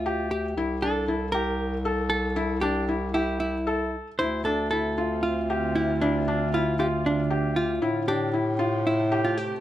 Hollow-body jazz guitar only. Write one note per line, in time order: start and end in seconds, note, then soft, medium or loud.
0.00 0.31 F4 medium
0.31 0.84 G4 medium
0.82 1.30 A4 medium
1.32 2.09 A#4 loud
2.10 2.63 A4 medium
2.61 3.14 G4 medium
3.14 3.39 E4 medium
3.40 3.95 E4 medium
4.19 4.44 C5 loud
4.45 4.69 A4 medium
4.71 5.25 A4 medium
5.23 5.75 F4 medium
5.75 6.02 E4 medium
6.01 6.55 D4 medium
6.54 6.79 F4 medium
6.80 6.87 G4 medium
7.06 7.53 D4 medium
7.56 8.08 F4 medium
8.08 8.86 G4 medium
8.87 9.24 E4 medium
9.25 9.37 F4 medium
9.37 9.60 G4 medium